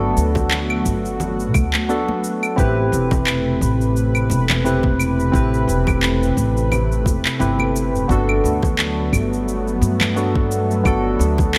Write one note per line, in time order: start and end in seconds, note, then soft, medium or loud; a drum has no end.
0.00 0.11 G1 medium
0.00 2.54 F#3 medium
0.00 2.54 A3 medium
0.00 1.89 B3 medium
0.00 2.54 B3 medium
0.00 1.89 D4 medium
0.00 1.89 F#4 medium
0.00 2.54 F#4 medium
0.00 1.90 A4 loud
0.17 0.81 D2 medium
0.17 cabasa medium
0.35 kick loud
0.35 low conga medium
0.35 cabasa soft
0.51 clap medium
0.51 cabasa soft
0.70 claves medium
0.85 1.55 G1 medium
0.85 kick medium
0.85 cabasa medium
1.05 cabasa soft
1.20 low conga medium
1.20 cabasa soft
1.40 cabasa soft
1.54 1.70 D2 medium
1.54 kick loud
1.54 high conga medium
1.54 cabasa medium
1.54 claves medium
1.73 clap medium
1.73 cabasa soft
1.89 2.54 B3 medium
1.89 2.54 D4 medium
1.89 2.54 F#4 medium
1.89 2.55 A4 medium
1.89 cabasa soft
2.08 high conga medium
2.24 cabasa medium
2.43 cabasa soft
2.43 claves medium
2.56 2.87 A1 medium
2.56 8.06 C3 medium
2.56 11.58 A3 medium
2.56 4.60 C4 medium
2.56 4.61 E4 medium
2.56 4.61 G4 medium
2.56 8.06 B4 medium
2.56 4.62 B4 loud
2.56 kick loud
2.56 cabasa soft
2.92 3.57 E1 medium
2.92 cabasa medium
3.11 kick loud
3.11 low conga medium
3.11 cabasa soft
3.27 clap medium
3.27 cabasa soft
3.27 claves medium
3.61 4.26 A1 medium
3.61 kick medium
3.61 cabasa medium
3.81 cabasa soft
3.96 cabasa soft
4.15 cabasa soft
4.15 claves medium
4.30 5.29 E1 medium
4.30 high conga medium
4.30 cabasa medium
4.50 clap medium
4.50 low conga medium
4.50 cabasa soft
4.64 5.30 C4 medium
4.64 5.30 E4 medium
4.64 5.31 G4 medium
4.64 5.31 B4 medium
4.64 cabasa soft
4.83 kick loud
4.83 high conga medium
4.99 cabasa medium
4.99 claves medium
5.20 cabasa soft
5.32 5.63 A1 medium
5.32 7.36 C4 medium
5.32 7.37 E4 medium
5.32 7.37 G4 medium
5.32 7.38 B4 loud
5.32 kick loud
5.32 cabasa soft
5.54 cabasa soft
5.68 6.33 E1 medium
5.68 cabasa medium
5.87 kick loud
5.87 low conga medium
5.87 cabasa soft
5.87 claves medium
6.03 clap medium
6.03 cabasa soft
6.23 cabasa soft
6.37 7.06 A1 medium
6.37 kick medium
6.37 cabasa medium
6.57 cabasa soft
6.72 low conga medium
6.72 cabasa soft
6.72 claves medium
6.92 cabasa soft
7.06 7.22 E1 medium
7.06 kick loud
7.06 high conga medium
7.06 cabasa medium
7.25 clap medium
7.25 cabasa soft
7.39 7.94 G1 medium
7.39 8.05 C4 medium
7.39 8.06 E4 medium
7.39 8.06 G4 medium
7.39 8.06 B4 medium
7.39 cabasa soft
7.59 high conga medium
7.59 claves medium
7.76 cabasa medium
7.94 8.07 E1 medium
7.94 cabasa soft
8.08 8.39 G1 medium
8.08 11.58 F#3 medium
8.08 10.12 B3 medium
8.08 11.58 B3 medium
8.08 10.13 D4 medium
8.08 10.13 F#4 medium
8.08 10.14 A4 loud
8.08 kick loud
8.08 cabasa soft
8.29 claves medium
8.44 9.09 D2 medium
8.44 cabasa medium
8.63 kick loud
8.63 low conga medium
8.63 cabasa soft
8.79 clap medium
8.79 cabasa soft
9.13 9.78 G1 medium
9.13 kick medium
9.13 cabasa medium
9.13 claves medium
9.33 cabasa soft
9.48 cabasa soft
9.68 cabasa soft
9.81 10.81 G2 medium
9.81 high conga medium
9.81 cabasa medium
10.00 clap medium
10.00 low conga medium
10.00 cabasa soft
10.00 claves medium
10.16 10.81 B3 medium
10.16 10.82 D4 medium
10.16 10.82 F#4 medium
10.16 10.82 A4 medium
10.16 cabasa soft
10.35 kick loud
10.35 high conga medium
10.52 cabasa medium
10.71 cabasa soft
10.84 11.15 G1 medium
10.84 11.58 B3 medium
10.84 11.58 D4 medium
10.84 11.58 F#4 medium
10.84 11.58 A4 loud
10.84 kick loud
10.84 cabasa soft
10.84 claves medium
11.19 11.58 D2 medium
11.19 cabasa medium
11.38 kick loud
11.38 low conga medium
11.38 cabasa soft
11.55 clap medium